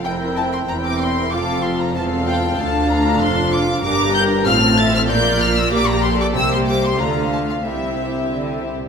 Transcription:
<<
  \new Staff \with { instrumentName = "Violin section" } { \time 2/4 \key c \mixolydian \tempo 4 = 95 g''8 a''16 c'''16 bes''16 d'''16 c'''8 | d'''8 c'''16 bes''16 a''8 g''8 | a''8 bes''8 c'''8 d'''8 | d'''8 g'''8 f'''8 a'''16 f'''16 |
g'''8 f'''16 e'''16 d'''16 bes''16 c'''16 d'''16 | e'''16 c'''16 d'''16 c'''16 bes''8 a''16 f''16 | e''4 r4 | }
  \new Staff \with { instrumentName = "Violin section" } { \time 2/4 \key c \mixolydian << { g''4 g''4 | f''4 f''4 | f''2 | bes''4 f''8 e''8 |
d''4 d''4 | c''4 f''4 | e''4. r8 | } \\ { bes'4 bes'4 | a'4 a'4 | a'2 | bes'4 a'4 |
bes'4 bes'8 a'8 | g'4 f'4 | g'4. r8 | } >> }
  \new Staff \with { instrumentName = "Viola section" } { \time 2/4 \key c \mixolydian <c' e'>4 <c' e'>4 | <c' f'>4 <c' f'>4 | <d' f'>2 | <d' g'>4 <c' f'>4 |
<bes f'>4 <bes g'>4 | <bes g'>4 <a d'>4 | <c' e'>4. r8 | }
  \new Staff \with { instrumentName = "Cello section" } { \clef bass \time 2/4 \key c \mixolydian f,4 e,4 | f,4 e,4 | d,4 f,4 | g,4 a,4 |
bes,4 bes,4 | c4 d4 | c4 d8 c16 bes,16 | }
  \new Staff \with { instrumentName = "Double bass section" } { \clef bass \time 2/4 \key c \mixolydian f,,4 e,,4 | f,,4 e,,4 | d,4 f,,4 | g,,4 a,,4 |
bes,,4 bes,,4 | c,4 d,4 | c,4. r8 | }
>>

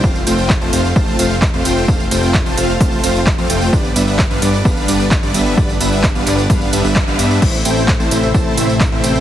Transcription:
<<
  \new Staff \with { instrumentName = "Supersaw synth" } { \time 4/4 \key a \minor \tempo 4 = 130 <a c' f' c'' f''>16 r16 <a c' f' c'' g''>8 r16 <a c' f' c'' a''>16 <a c' f' c'' f''>16 r16 <a c' f' c'' a''>8 <a c' f' c'' f''>16 r8 <a c' f' c'' f''>16 <a c' f' c'' g''>8 | <a c' f' c'' f''>16 r16 <a c' f' c'' g''>8 r16 <a c' f' c'' a''>16 <a c' f' c'' f''>16 r16 <a c' f' c'' a''>8 <a c' f' c'' f''>16 r8 <a c' f' c'' f''>16 <a c' f' c'' g''>8 | <g b d' b' d''>16 r16 <g b d' b' e''>8 r16 <g b d' b' f''>16 <g b d' b' d''>16 r16 <g b d' b' f''>8 <g b d' b' d''>16 r8 <g b d' b' d''>16 <g b d' b' e''>8 | <g b d' b' d''>16 r16 <g b d' b' e''>8 r16 <g b d' b' f''>16 <g b d' b' d''>16 r16 <g b d' b' f''>8 <g b d' b' e''>16 <g b d' b' e''>8 <g b d' b' f''>16 <g b d' b' e''>8 |
<a c' e' c'' e''>16 r16 <a c' e' c'' g''>8 r16 <a c' e' c'' a''>16 <a c' e' c'' e''>16 r16 <a c' e' c'' a''>8 <a c' e' c'' e''>16 r8 <a c' e' c'' e''>16 <a c' e' c'' g''>8 | }
  \new Staff \with { instrumentName = "Analog synth pad" } { \time 4/4 \key a \minor r1 | r1 | r1 | r1 |
<c a e'>1 | }
  \new Staff \with { instrumentName = "Analog synth bass" } { \clef bass \time 4/4 \key a \minor f,,8 f,,8. f,,16 f,,8 f,,8 f,,8. f,,16 f,,8 | f,,8 f,,8. f,,16 f,,8 f,,8 f,,8. f,16 f,,8 | g,,8 g,,8. g,,16 g,,8 g,,8 g,,8. g,,16 g,,8 | g,,8 g,,8. g,,16 g,,8 g,,8 g,,16 g,,8 g,,16 g,8 |
a,,8 a,,8. a,,16 a,,8 a,,8 a,,8. a,,16 a,,8 | }
  \new DrumStaff \with { instrumentName = "Drums" } \drummode { \time 4/4 <bd tamb>16 tamb16 <hho cymr tamb>16 tamb16 <hc bd tamb>16 tamb16 <hho cymr tamb>16 tamb16 <bd tamb>16 tamb16 <hho cymr tamb>16 tamb16 <hc bd tamb>16 tamb16 <hho cymr tamb>16 tamb16 | <bd tamb>16 tamb16 <hho cymr tamb>16 tamb16 <hc bd tamb>16 tamb16 <hho cymr tamb>16 tamb16 <hho bd tamb>16 tamb16 <hho cymr tamb>16 tamb16 <hc bd tamb>16 tamb16 <hho cymr tamb>16 tamb16 | <bd tamb>16 tamb16 <hho cymr tamb>16 tamb16 <hc bd tamb>16 tamb16 <hho cymr tamb>16 tamb16 <bd tamb>16 tamb16 <hho cymr tamb>16 tamb16 <hc bd tamb>16 tamb16 <hho cymr tamb>16 tamb16 | <bd tamb>16 tamb16 <hho cymr tamb>16 tamb16 <hc bd tamb>16 tamb16 <hc hho cymr tamb>16 tamb16 <hho bd tamb>16 tamb16 <hho cymr tamb>16 tamb16 <hc bd tamb>16 tamb16 <hho cymr tamb>16 tamb16 |
<cymc bd tamb>16 tamb16 <hho cymr tamb>16 tamb16 <hc bd tamb>16 tamb16 <hho cymr tamb>16 tamb16 <bd tamb>8 <hho cymr tamb>16 tamb16 <hc bd tamb>8 <hho cymr tamb>16 tamb16 | }
>>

